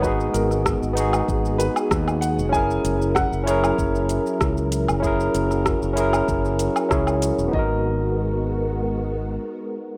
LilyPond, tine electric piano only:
\new Staff \with { instrumentName = "Tine electric piano" } { \time 4/4 \key gis \minor \tempo 4 = 96 <b dis' fis' gis'>4. <b dis' fis' gis'>2~ <b dis' fis' gis'>8 | <cis' e' gis' ais'>4. <cis' e' gis' ais'>2~ <cis' e' gis' ais'>8 | <cis' e' gis' ais'>4. <cis' e' gis' ais'>4. <cis' e' gis' cis''>4 | <b dis' fis' ais'>1 | }